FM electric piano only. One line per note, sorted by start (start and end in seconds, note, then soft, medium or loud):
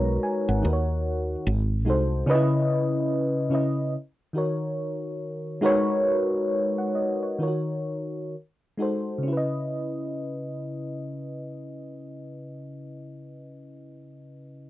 0.00 0.64 G#3 loud
0.00 0.63 D#4 loud
0.00 0.64 F#4 loud
0.00 0.65 A#4 loud
0.00 0.64 B4 loud
0.00 0.65 C#5 loud
0.00 0.20 A#5 medium
0.23 0.46 G#5 medium
0.49 0.87 F#5 medium
0.62 1.32 D#3 medium
0.62 1.32 D#4 medium
0.62 1.33 F#4 medium
0.62 1.33 A#4 medium
0.66 0.72 B4 medium
0.73 1.37 C#5 medium
1.85 2.20 G#3 medium
1.85 2.20 D#4 medium
1.85 2.21 F#4 medium
1.85 2.21 A4 medium
1.90 2.22 C5 medium
2.26 3.26 C#3 loud
2.26 3.27 C#4 loud
2.26 2.36 D#4 medium
2.26 3.28 B4 loud
2.31 3.28 D#5 loud
2.35 3.31 E4 loud
3.50 3.92 C#3 medium
3.50 3.92 C#4 medium
3.50 3.93 E4 medium
3.50 3.94 B4 medium
3.55 3.94 D#5 medium
4.33 5.36 D#3 medium
4.33 5.37 D#4 medium
4.33 5.38 F#4 medium
4.33 5.38 A#4 medium
4.38 5.39 C#5 medium
5.61 6.68 G#3 loud
5.61 6.68 D#4 loud
5.61 6.69 F#4 loud
5.61 6.69 A#4 medium
5.61 6.69 B4 loud
5.66 6.51 C#5 loud
6.78 6.94 F#5 medium
6.95 7.21 D#5 medium
7.23 7.42 C#5 medium
7.39 8.17 D#3 medium
7.39 8.17 D#4 medium
7.39 7.49 F4 medium
7.39 8.18 A#4 medium
7.43 8.19 C#5 medium
7.47 8.21 F#4 medium
8.77 9.18 G#3 medium
8.77 9.18 D#4 medium
8.77 9.19 F#4 medium
8.77 9.20 A4 medium
8.82 9.20 C5 medium
9.18 12.71 C#3 medium
9.23 12.76 C#4 medium
9.28 12.81 E4 medium
9.33 12.86 B4 medium
9.37 12.90 D#5 medium